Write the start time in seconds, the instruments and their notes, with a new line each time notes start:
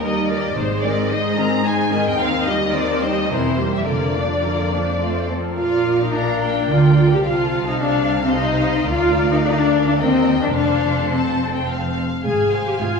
Already playing: cello section D#2
0.02 viola section G3 D#4, violin section A#4 D#5
0.29 viola section D#3 A#3, violin section G4 D5 D#5
0.56 double bass section G#1, cello section G#2, viola section G#3 D#4, violin section C5
0.83 viola section D#3 C4, violin section G#4 D5 D#5
1.10 viola section G#3 D#4, violin section C5 D#5
1.38 viola section D#3 C4, violin section G#4 D#5 A#5
1.65 viola section G#3 D#4, violin section C5 G#5
1.91 viola section D#3 C4, violin section G#4 D#5
2.07 violin section G5
2.19 double bass section D#2, cello section D#2, viola section D#3 C4, violin section D#4 C5 F5
2.47 viola section G3 D#4, violin section G4 D#5
2.74 viola section D#3 C4, violin section D#4 C5 D5
3.01 viola section G3 D#4, violin section G4 C5 D#5
3.16 violin section D#5
3.29 double bass section E1, cello section E2, viola section E3 C4, violin section E4 A#4 C5
3.58 viola section G3 A#3, violin section G4 C5
3.74 violin section E5
3.87 double bass section F1, cello section F2, viola section D3 A#3, violin section F4 A#4 D5
4.16 viola section F3 D4, violin section D4 D5
4.43 viola section D3 A#3, violin section F4 A#4
4.72 viola section F3 D4, violin section D4 D5
5.01 viola section A3, violin section F4 C5
5.29 viola section F3 C4, violin section C4 A4
5.58 double bass section A#1, cello section A#2, viola section F4, violin section A#4 D5 F5
6.02 viola section D#4
6.14 viola section D4, violin section F5 A#5
6.42 violin section G5
6.69 double bass section D2, cello section D3, viola section F4, violin section D5
7.13 viola section G4
7.25 double bass section C2, cello section C3, viola section F4, violin section A4 F5
7.68 viola section D#4
7.80 viola section D4, violin section F5
8.24 viola section C4
8.34 viola section D#4, violin section C5 D#5
8.88 cello section D2, double bass section D2, viola section F4, violin section A#4 D5
9.32 viola section D#4
9.45 viola section D4
9.51 viola section D#4
9.58 viola section D4
9.87 viola section D4
9.99 double bass section D#2, cello section D#2, viola section C4, violin section A#4 D#5 G5
10.42 viola section D4
10.55 double bass section F1, cello section F2, viola section D4, violin section A4 C5 F5
11.11 viola section C4, violin section A5
11.56 violin section G5
11.67 violin section F5
12.23 double bass section G#1, cello section G#2, viola section G#4, violin section G#4 F5 G#5
12.52 violin section C5 F5 G#5
12.67 viola section G4
12.80 double bass section G#1, cello section G#2, viola section F4, violin section G#4 F5 G#5